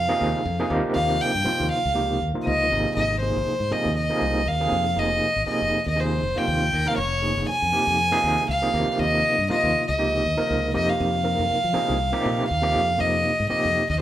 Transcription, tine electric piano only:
0.09 C3 F3 A#3 D#4 G#4
0.59 C3 F3 A#3 D#4 G#4
0.70 C3 F3 A#3 D#4 G4
1.44 C3 F3 A#3 D#4 F4
1.94 C3 F3 A#3 D#4 G4
2.34 C3 F3 A#3 D#4 F4
2.71 C3 F3 A#3 D#4 G#4
3.21 C3 F3 A#3 D#4 G#4
3.71 C3 F3 A#3 D#4 G#4
4.09 C3 F3 A#3 D#4 G#4
4.60 C3 F3 A#3 D#4 G#4
4.96 C3 F3 A#3 D#4 G#4
5.46 C3 F3 A#3 D#4 G#4
5.96 C3 F3 A#3 D#4 G#4
6.35 C3 F3 A#3 D#4 F4
6.85 C3 F3 A#3 D#4 A#4
7.21 C3 F3 A#3 D#4 G#4
7.72 C3 F3 A#3 D#4 G4
8.11 C3 F3 A#3 D#4 G#4
8.62 C3 F3 A#3 D#4 G#4
8.73 C3 F3 A#3 D#4 G4
9.49 C3 F3 A#3 D#4 F4
9.98 C3 F3 A#3 D#4 G4
10.37 C3 F3 A#3 D#4 A#4
10.74 C3 F3 A#3 D#4 G4
11.24 C3 F3 A#3 D#4 A#4
11.73 C3 F3 A#3 D#4 G#4
12.13 C3 F3 A#3 D#4 G4
12.62 C3 F3 A#3 D#4 G4
12.98 C3 F3 A#3 D#4 G4
13.49 C3 F3 A#3 D#4 G4

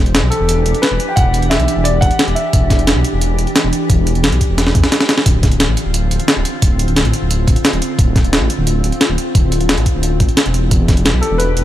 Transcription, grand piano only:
0.30 A4
0.82 B4
1.09 G5
1.16 F#5
1.50 E5
1.84 D5
2.01 F#5
2.35 E5
11.21 A4
11.38 B4

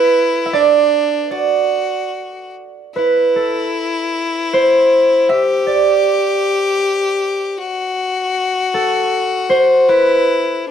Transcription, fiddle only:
Already playing: E4
0.55 D4
1.32 F#4
2.94 E4
5.30 G4
7.58 F#4
9.88 E4

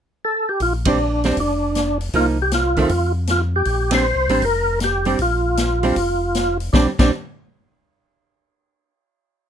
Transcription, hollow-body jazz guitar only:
0.86 G3 C4 D4
1.25 G3 C4 D4
2.14 F3 A#3 D#4
2.77 D#3 A3 C4
3.91 G3 C4 D4
4.30 G3 C4 D4
5.06 G3 C4 D4
5.83 G3 C4 D4
6.74 G3 C4 D4
6.99 G3 C4 D4

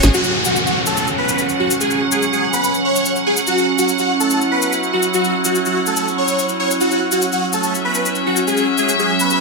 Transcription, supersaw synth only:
0.14 F#4
0.45 F#4
0.66 F#4
0.87 A4
1.18 B4
1.60 F#4
1.80 G#4
2.12 G#4
2.32 G#4
2.53 B4
2.85 C#5
3.26 G#4
3.47 F#4
3.78 F#4
3.99 F#4
4.20 A4
4.51 B4
4.93 F#4
5.14 F#4
5.45 F#4
5.66 F#4
5.87 A4
6.18 C#5
6.60 C#5
6.80 F#4
7.12 F#4
7.32 F#4
7.53 A4
7.85 B4
8.26 F#4
8.47 G#4
8.78 G#4
8.99 G#4
9.20 B4

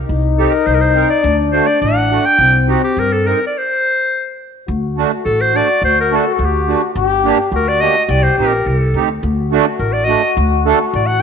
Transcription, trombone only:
0.07 D#4
1.23 D4
2.40 C4
4.68 F#4
6.95 G4
7.53 F#4
8.10 G4
9.24 F#4

